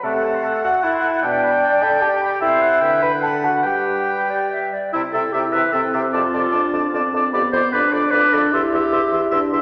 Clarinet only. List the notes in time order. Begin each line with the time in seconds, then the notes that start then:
0.04 D5
0.14 F#5
0.25 A5
0.34 C6
0.44 A5
0.54 F#5
0.63 D5
0.75 F#5
0.83 A5
0.94 C6
1.04 A5
1.13 F#5
1.23 D5
1.33 G5
1.43 B5
1.52 G5
1.62 D5
1.71 G5
1.82 B5
1.92 G5
2.01 D5
2.11 G5
2.21 B5
2.31 G5
2.41 A4
2.81 B4
3.22 A4
3.63 B4
4.93 E4
5.12 A4
5.32 G4
5.52 B4
5.73 A4
5.94 G4
6.14 F4
7.33 G4
7.52 C5
7.73 B4
7.92 D5
8.11 B4
8.33 A4
8.52 G4